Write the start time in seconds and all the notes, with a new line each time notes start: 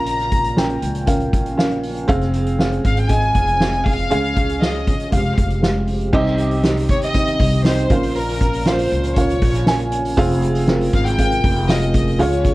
Already playing: A#1 A#2 C#3 F3 A#3 C#4 F4 A#4 F5 A#5
0.07 closed hi-hat
0.19 snare, closed hi-hat
0.32 kick, closed hi-hat
0.45 closed hi-hat
0.56 C#4 A#4 G5, snare
0.70 closed hi-hat
0.82 C#2, closed hi-hat
0.95 closed hi-hat
1.06 C#4 A#4 F5, kick, closed hi-hat
1.20 closed hi-hat
1.33 A#1, kick, closed hi-hat
1.46 closed hi-hat
1.57 C#4 A#4 F5, snare
1.71 closed hi-hat
1.83 open hi-hat
1.97 closed hi-hat
2.08 F1 G#3 C4 G#4 F5, kick, closed hi-hat
2.21 snare, closed hi-hat
2.34 closed hi-hat
2.47 closed hi-hat
2.59 C4 G#4 F5, snare
2.72 closed hi-hat
2.85 G#1 F5, kick, closed hi-hat
2.97 G5, closed hi-hat
3.09 C4 G#4 D#5 G#5, kick, closed hi-hat
3.22 closed hi-hat
3.35 F1, kick, closed hi-hat
3.48 closed hi-hat
3.60 C4 G#4 F5, snare
3.73 closed hi-hat
3.86 F5, kick, open hi-hat
3.99 closed hi-hat
4.10 C#2 C#3 C#4 G#4 F5, closed hi-hat
4.24 closed hi-hat
4.36 kick, closed hi-hat
4.49 closed hi-hat
4.61 C#4 G#4 D#5 F5, snare
4.75 closed hi-hat
4.87 F2, kick, closed hi-hat
5.00 closed hi-hat
5.11 F1 F3 G#3 C4 G4 F5, kick, closed hi-hat
5.25 closed hi-hat
5.38 F1, kick, closed hi-hat
5.50 closed hi-hat
5.62 G#3 G4 F5, snare
5.87 open hi-hat
6.01 closed hi-hat
6.13 C2 C3 D#3 G3 C4 D#4 G4 D#5, kick, crash
6.26 snare
6.38 hi-hat pedal, open hi-hat
6.51 open hi-hat
6.63 C4 D#4 G4 D#5, snare, hi-hat pedal, open hi-hat
6.77 hi-hat pedal, open hi-hat
6.89 D#2 C#5, kick, hi-hat pedal, open hi-hat
7.02 D#5, hi-hat pedal, open hi-hat
7.14 C4 D#4 G4 D#5, kick, hi-hat pedal, open hi-hat
7.27 hi-hat pedal
7.39 C2, kick, hi-hat pedal, open hi-hat
7.52 open hi-hat
7.65 C4 D#4 G4 C5 D#5, snare, hi-hat pedal, open hi-hat
7.77 hi-hat pedal, open hi-hat
7.90 A#1 A#2 C#3 F3 A#3 C#4 F4 A#4 F5, kick, hi-hat pedal, open hi-hat
8.03 hi-hat pedal, open hi-hat
8.16 A#4, hi-hat pedal, open hi-hat
8.28 snare, hi-hat pedal, open hi-hat
8.40 kick, hi-hat pedal, open hi-hat
8.53 hi-hat pedal, open hi-hat
8.65 C#4 F4 A#4 C5 F5, snare, hi-hat pedal, open hi-hat
8.78 hi-hat pedal, open hi-hat
8.91 C#2, hi-hat pedal, open hi-hat
9.03 hi-hat pedal, open hi-hat
9.16 C#4 F4 A#4 C#5 F5, kick, hi-hat pedal, open hi-hat
9.29 hi-hat pedal, open hi-hat
9.41 A#1, kick, hi-hat pedal, open hi-hat
9.54 hi-hat pedal, open hi-hat
9.66 C#4 F4 A#4 G#5, snare, hi-hat pedal, open hi-hat
9.79 hi-hat pedal, open hi-hat
9.91 hi-hat pedal, open hi-hat
10.04 hi-hat pedal, open hi-hat
10.17 F1 C3 F3 G#3 C4 F4 G#4 F5, kick, hi-hat pedal, open hi-hat
10.30 hi-hat pedal, open hi-hat
10.42 hi-hat pedal, open hi-hat
10.55 hi-hat pedal, open hi-hat
10.67 C4 F4 G#4 A#4, snare, hi-hat pedal, open hi-hat
10.80 hi-hat pedal, open hi-hat
10.93 G#1 F5, kick, hi-hat pedal, open hi-hat
11.05 G5, hi-hat pedal, open hi-hat
11.18 C4 F4 G#4 F5, kick, hi-hat pedal, open hi-hat
11.31 hi-hat pedal
11.44 F1, kick, hi-hat pedal, open hi-hat
11.56 open hi-hat
11.68 C4 F4 G#4 D#5 F5, snare, hi-hat pedal, open hi-hat
11.82 hi-hat pedal
11.94 kick, hi-hat pedal, open hi-hat
12.08 open hi-hat
12.19 C#2 C#3 G#3 C#4 F4 G#4 C#5 F5, hi-hat pedal, open hi-hat
12.32 hi-hat pedal
12.44 kick, hi-hat pedal, open hi-hat